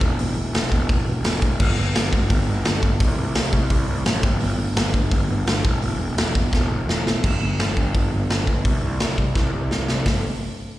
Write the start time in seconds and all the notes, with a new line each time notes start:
0.01 E1, kick
0.19 E1, open hi-hat
0.37 E1
0.54 E1, snare, open hi-hat
0.72 E1, kick
0.89 E1, kick, open hi-hat
1.07 E1
1.24 E1, snare, open hi-hat
1.42 E1, kick
1.60 G1, kick, crash
1.78 G1
1.95 G1, snare, open hi-hat
2.13 G1, kick
2.30 G1, kick, open hi-hat
2.48 G1
2.65 G1, snare, open hi-hat
2.83 G1, kick
3.00 C2, kick, open hi-hat
3.18 C2
3.35 C2, snare, open hi-hat
3.53 C2, kick
3.70 C2, kick, open hi-hat
3.88 C2
4.05 A1, snare, open hi-hat
4.23 G1, kick
4.40 G1, open hi-hat
4.58 G1
4.76 G1, snare, open hi-hat
4.94 G1, kick
5.11 G1, kick, open hi-hat
5.29 G1
5.46 G1, snare, open hi-hat
5.65 E1, kick
5.82 E1, open hi-hat
5.99 E1
6.17 E1, snare, open hi-hat
6.35 E1, kick
6.53 E1, kick, snare
6.70 E1
6.88 E1, snare
7.06 E1, snare
7.24 G1, kick, crash
7.42 G1
7.59 G1, snare, open hi-hat
7.77 G1, kick
7.95 G1, kick, open hi-hat
8.12 G1
8.30 G1, snare, open hi-hat
8.47 G1, kick
8.65 C2, kick, open hi-hat
8.83 C2
9.00 C2, snare, open hi-hat
9.18 C2, kick
9.35 C2, kick, snare
9.54 C2
9.71 C2, snare
9.88 C2, snare
10.05 G1, kick, snare, open hi-hat